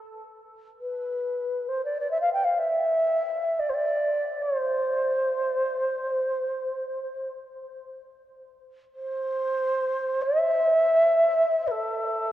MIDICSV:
0, 0, Header, 1, 2, 480
1, 0, Start_track
1, 0, Tempo, 500000
1, 11828, End_track
2, 0, Start_track
2, 0, Title_t, "Xiao"
2, 0, Program_c, 0, 77
2, 773, Note_on_c, 0, 71, 73
2, 1617, Note_on_c, 0, 72, 70
2, 1632, Note_off_c, 0, 71, 0
2, 1770, Note_off_c, 0, 72, 0
2, 1776, Note_on_c, 0, 74, 73
2, 1901, Note_off_c, 0, 74, 0
2, 1921, Note_on_c, 0, 74, 68
2, 2018, Note_off_c, 0, 74, 0
2, 2024, Note_on_c, 0, 76, 85
2, 2114, Note_off_c, 0, 76, 0
2, 2120, Note_on_c, 0, 77, 76
2, 2227, Note_off_c, 0, 77, 0
2, 2232, Note_on_c, 0, 79, 83
2, 2342, Note_on_c, 0, 77, 76
2, 2356, Note_off_c, 0, 79, 0
2, 2476, Note_on_c, 0, 76, 81
2, 2491, Note_off_c, 0, 77, 0
2, 3447, Note_on_c, 0, 74, 84
2, 3462, Note_off_c, 0, 76, 0
2, 3544, Note_on_c, 0, 72, 66
2, 3559, Note_off_c, 0, 74, 0
2, 3588, Note_on_c, 0, 74, 86
2, 3603, Note_off_c, 0, 72, 0
2, 4242, Note_on_c, 0, 72, 79
2, 4257, Note_off_c, 0, 74, 0
2, 7007, Note_off_c, 0, 72, 0
2, 8584, Note_on_c, 0, 72, 82
2, 9814, Note_on_c, 0, 76, 102
2, 9829, Note_off_c, 0, 72, 0
2, 11205, Note_on_c, 0, 71, 76
2, 11219, Note_off_c, 0, 76, 0
2, 11242, Note_on_c, 0, 69, 83
2, 11252, Note_off_c, 0, 71, 0
2, 11828, Note_off_c, 0, 69, 0
2, 11828, End_track
0, 0, End_of_file